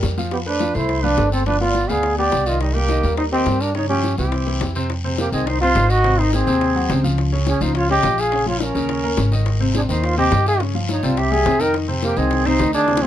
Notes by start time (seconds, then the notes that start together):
Already playing: G3 G4 A#4
0.03 F2, high bongo, low bongo, short guiro
0.17 F3 F4 F5, high bongo, short guiro
0.31 B3 G4, high bongo, long guiro
0.46 A3 D4 A4 B4 C5, high bongo
0.60 F3 F4 F5, high bongo, short guiro
0.75 C2 A3 E4 A4 C5, short guiro
0.89 high bongo, long guiro
1.03 F3 D4 F4 B4 F5, high bongo
1.17 G1 A3 A4 C5, high bongo, low bongo, short guiro
1.32 C4 A4, high bongo, short guiro
1.46 F3 D4 F4 B4 F5, high bongo, long guiro
1.60 B3 F4 B4 D5
1.75 high bongo, short guiro
1.89 D2 B3 G#4 B4 D5 F5, high bongo, short guiro
2.03 high bongo, long guiro
2.17 B3 G4 B4 D5, high bongo
2.32 C2, high bongo, low bongo, short guiro
2.46 D#3 D#4 F4 D5 D#5, high bongo, short guiro
2.59 G3 D#4, high bongo, long guiro
2.75 G3 A#3 G4 A#4, high bongo
2.89 D#3 D#4 D#5, high bongo, short guiro
3.03 D#2 G3 G4 A#4, short guiro
3.17 D#4 C5, high bongo, long guiro
3.31 D#3 C4 D#4 G4 D#5, high bongo
3.46 G2 G3 G4 A#4, high bongo, low bongo, short guiro
3.60 D4 A#4, high bongo, short guiro
3.74 C#3 C#4 D#4 C#5, high bongo, long guiro
3.89 F3 C#4 F4 G4
4.03 high bongo, short guiro
4.17 C2 E3 C4 E4 G4, high bongo, short guiro
4.32 high bongo, long guiro
4.47 E3 E4 G4, high bongo
4.61 F2, high bongo, low bongo, short guiro
4.75 C3 C4 C5, high bongo, short guiro
4.90 high bongo, long guiro
5.04 C3 C4 C5
5.18 A#3 G4, high bongo, short guiro
5.32 C2 D#3 C4 D#4 G#4 D#5, high bongo, short guiro
5.46 D#4 C5, high bongo, long guiro
5.61 C3 C4 F4 C5, high bongo
5.75 G#1 D#3, high bongo, low bongo, short guiro
5.90 F#4 D#5, high bongo, short guiro
6.04 C3 C4 C5, high bongo, long guiro
6.18 D#3 D#4 C5 D#5, high bongo
6.33 C4 G#4, high bongo, short guiro
6.46 D#2 C3 C4 C5, high bongo, short guiro
6.61 high bongo, long guiro
6.75 F#3 F#4 F#5
6.89 C#2 C3 C4 C5, high bongo, low bongo, short guiro
7.04 F3 F4 F5, high bongo, short guiro
7.18 high bongo, long guiro
7.32 C#3 C#4 C#5
7.47 C#4 G#4, high bongo, short guiro
7.61 C#2 F3 D#4 F4 C5 F5, high bongo, short guiro
7.75 F4 C#5, high bongo, long guiro
7.89 C#3 C#4 G4 C#5 D#5, high bongo
8.03 A#1 F3 F4 F5, high bongo, low bongo, short guiro
8.18 G#4 F5, high bongo, short guiro
8.32 C#3 C#4 C#5, high bongo, long guiro
8.46 F3 F4 C#5 F5, high bongo
8.60 C#4 A#4, high bongo, short guiro
8.75 D#2 C#3 C#4 C#5, high bongo, short guiro
8.89 high bongo, long guiro
9.04 A#3 A#4 A#5
9.17 G#1 C#3 C#4 C#5, high bongo, low bongo, short guiro
9.32 D#3 D#4 D#5, high bongo, short guiro
9.46 high bongo, long guiro
9.60 C3 C4 C5
9.75 D4 G#4, high bongo, short guiro
9.89 D#2 D#3 D#4 C5 D#5, high bongo, short guiro
10.03 F4 C5, high bongo, long guiro
10.17 C3 C4 G4 C5 D#5, high bongo
10.32 G2 D#3 D#4, high bongo, low bongo, short guiro
10.46 G#4 F5, high bongo, short guiro
10.60 C#3 C#4 C#5, high bongo, long guiro
10.74 F3 F4 F5, high bongo
10.89 D#4 C#5, high bongo, short guiro
11.03 C2 C3 C4 F4 C5 D5, high bongo, short guiro
11.17 G4 E5, high bongo, long guiro
11.31 G3 G4 G#4 E5 G5
11.45 F2 C3 C4 C5, high bongo, low bongo, short guiro
11.60 D#3 D#4 A#4 D#5 G5, high bongo, short guiro
11.74 high bongo, long guiro
11.88 C3 C4 C5
12.02 A#3 G4, high bongo, short guiro
12.16 C2 D#3 C4 D#4 G#4 D#5, high bongo, short guiro
12.31 high bongo, long guiro
12.45 C3 C4 D#4 C5, high bongo
12.59 D2 D#3 D#4 D#5, high bongo, low bongo, short guiro
12.73 D4 G#4, high bongo, short guiro
12.88 C3 C4 C5, high bongo, long guiro
12.97 high bongo
13.02 F3 C4 F4 G#4 F5